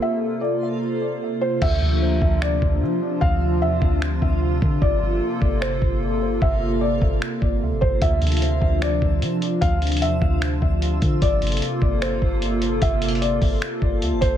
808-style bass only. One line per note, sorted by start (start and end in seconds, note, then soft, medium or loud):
1.62 1.81 D2 loud
1.82 2.20 D2 loud
2.22 2.60 D2 loud
2.62 2.83 D2 loud
2.82 3.01 F3 loud
3.22 3.64 D2 loud
3.62 3.81 E2 loud
3.82 4.20 D2 loud
4.22 4.60 D2 loud
4.62 4.81 D3 loud
4.82 5.01 G1 loud
5.02 5.21 G1 loud
5.42 5.80 G1 loud
5.82 6.39 G1 loud
6.42 6.99 G1 loud
7.02 7.21 G1 loud
7.42 7.63 G1 loud
7.62 7.73 D2 medium
7.72 7.81 G1 medium
7.82 8.01 G1 loud
8.02 8.21 D2 loud
8.22 8.60 D2 loud
8.62 9.00 D2 loud
9.02 9.23 D2 loud
9.22 9.41 F3 loud
9.62 10.03 D2 loud
10.02 10.21 E2 loud
10.22 10.60 D2 loud
10.62 11.00 D2 loud
11.02 11.21 D3 loud
11.22 11.41 G1 loud
11.42 11.61 G1 loud
11.82 12.20 G1 loud
12.22 12.79 G1 loud
12.82 13.39 G1 loud
13.42 13.61 G1 loud
13.82 14.03 G1 loud
14.02 14.13 D2 loud
14.12 14.21 G1 loud
14.22 14.37 G1 loud